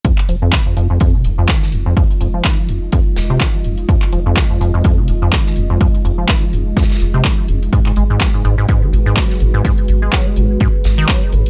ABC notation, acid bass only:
X:1
M:4/4
L:1/16
Q:"Swing 16ths" 1/4=125
K:Ablyd
V:1 name="Acid bass" clef=bass
F,, z F, F,, E, F,, F,, F,, F,, C, F,, F,, E,2 F,, F,, | F,, z F,, F, E, F, F,, z F,, z2 C, E, F, F,, z | F,, z F, F,, E, F,, F,, F,, F,, C, F,, F,, E,2 F,, F,, | F,, z F,, F, E, F, F,, z F,, z2 C, E, F, F,, z |
A,, A,, A, A,, _G, A,, A,, A,, z E, A,, A,, G,2 A,, A,, | A,, z2 A, _G, A, A,, z A,, z2 E, G, A, A,, z |]